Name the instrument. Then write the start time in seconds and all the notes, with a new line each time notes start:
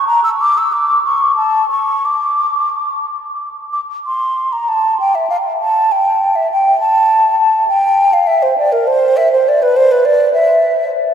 flute
0.07 A#5
0.24 E6
0.41 D6
0.58 E6
0.72 D6
1.05 C#6
1.36 A5
1.70 C#6
2.05 D6
3.73 D6
4.07 C6
4.53 A#5
4.68 A5
5.00 G5
5.15 E5
5.30 F5
5.61 A5
5.92 G5
6.36 E5
6.52 G5
6.80 A5
7.40 A5
7.68 G5
8.13 F5
8.27 E5
8.43 C5
8.58 D5
8.72 A#4
8.87 C5
9.17 E5
9.33 C5
9.48 D5
9.62 B4
9.77 C5
9.92 B4
10.05 D5
10.33 E5